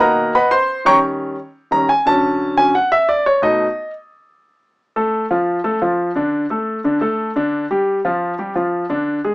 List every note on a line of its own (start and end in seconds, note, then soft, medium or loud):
0.00 0.32 B2 medium
0.00 0.32 D#3 soft
0.00 0.32 A#3 medium
0.00 0.32 A#4 medium
0.00 0.32 D#5 medium
0.00 0.32 F#5 medium
0.00 0.32 A#5 medium
0.35 0.52 B4 medium
0.35 0.52 D#5 medium
0.35 0.51 F#5 medium
0.35 0.51 B5 medium
0.51 0.83 C5 medium
0.51 0.83 C6 loud
0.85 1.34 D#3 medium
0.85 1.35 G3 medium
0.85 1.35 C#4 medium
0.85 0.96 C#5 medium
0.85 0.96 G5 medium
0.85 0.97 A#5 medium
0.85 0.96 C#6 loud
1.71 1.87 D#3 medium
1.71 1.87 G3 soft
1.71 1.87 C#4 medium
1.71 1.88 A#5 medium
1.89 2.05 G#5 medium
2.06 2.55 D3 medium
2.06 2.56 F#3 medium
2.06 2.56 C#4 medium
2.06 2.54 A5 loud
2.57 2.72 D3 soft
2.57 2.72 F#3 soft
2.57 2.73 C#4 medium
2.57 2.74 G#5 loud
2.75 2.91 F#5 medium
2.92 3.08 E5 medium
3.09 3.25 D5 medium
3.26 3.42 C#5 medium
3.42 3.65 B2 medium
3.42 3.65 A3 medium
3.42 3.65 D#4 medium
3.42 3.90 D#5 medium
4.96 5.24 A3 medium
4.96 5.24 A4 medium
5.31 5.59 F3 medium
5.31 5.59 F4 medium
5.64 5.78 A3 medium
5.64 5.78 A4 medium
5.82 6.10 F3 medium
5.82 6.10 F4 medium
6.15 6.44 D3 medium
6.15 6.44 D4 medium
6.50 6.78 A3 medium
6.50 6.79 A4 medium
6.84 6.99 D3 medium
6.84 6.99 D4 medium
7.01 7.29 A3 medium
7.01 7.30 A4 medium
7.36 7.64 D3 medium
7.36 7.64 D4 medium
7.71 7.99 G3 medium
7.71 7.99 G4 medium
8.05 8.33 F3 medium
8.05 8.33 F4 medium
8.39 8.53 G3 medium
8.39 8.53 G4 medium
8.55 8.84 F3 medium
8.55 8.84 F4 medium
8.89 9.18 D3 medium
8.89 9.18 D4 medium
9.25 9.35 G#3 medium
9.25 9.35 G#4 medium